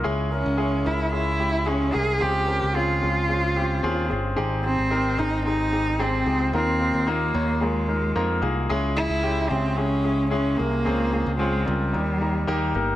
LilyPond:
<<
  \new Staff \with { instrumentName = "Grand piano" } { \time 4/4 \key des \lydian \tempo 4 = 111 <aes des' fes' aes'>8 <aes des' fes' bes'>8 <aes des' fes' aes'>8 <aes des' fes' bes'>8 <aes des' fes' aes'>8 <aes des' fes' g'>8 <aes des' fes' aes'>8 <aes des' fes' bes'>8 | <c' des' f' aes'>8 <c' des' f' bes'>8 <c' des' f' aes'>8 <c' des' f' aes'>8 <c' des' f' aes'>8 <c' des' f' g'>8 <c' des' f' aes'>8 <c' des' f' aes'>8 | <c' ees' g' aes'>8 <c' ees' g' aes'>8 <c' ees' g' bes'>8 <c' ees' g' aes'>8 <c' ees' g' aes'>8 <c' ees' g' aes'>8 <c' ees' g' aes'>8 <c' ees' g' aes'>8 | <bes ees' f' bes'>8 <bes ees' f' bes'>8 <bes ees' f' bes'>8 <bes ees' f' des''>8 <bes ees' f' aes'>8 <bes ees' f' bes'>8 <bes ees' f' bes'>8 <bes ees' f' aes'>8 |
<aes des' fes' aes'>8 <aes des' fes' aes'>8 <aes des' fes' g'>8 <aes des' fes' aes'>8 <aes des' fes' aes'>8 <aes des' fes' aes'>8 <aes des' fes' aes'>8 <aes des' fes' bes'>8 | <c' des' f' aes'>8 <c' des' f' aes'>8 <c' des' f' aes'>8 <c' des' f' bes'>8 <bes ees' g' bes'>8 <bes ees' g' bes'>8 <bes ees' g' bes'>8 <bes ees' g' bes'>8 | }
  \new Staff \with { instrumentName = "Grand piano" } { \clef bass \time 4/4 \key des \lydian des4. r2 r8 | des4. r2 r8 | aes,4. r2 r8 | ees4. r2 r8 |
des4. r2 r8 | des4. r8 ees4. r8 | }
  \new Staff \with { instrumentName = "Cello" } { \time 4/4 \key des \lydian r8 des'4 fes'8 fes'4 des'8 aes'8 | g'4 f'2~ f'8 r8 | r8 c'4 ees'8 ees'4 c'4 | c'4 bes4 aes4. r8 |
r8 fes'4 c'8 des'4 des'8 bes8~ | bes4 aes8 g2 r8 | }
  \new Staff \with { instrumentName = "Picked electric bass" } { \clef bass \time 4/4 \key des \lydian des,8. des,8. des,2 c,8 | des,8. des,8. des,4. ees,8 g,,8 | aes,,8. aes,,8. aes,,2 des,8 | ees,8. ees,8. ees,4. f,8 c,8 |
des,8. des,8. des,2 c,8 | des,8. des,8. des,8 ees,4 ees,8 g,,8 | }
>>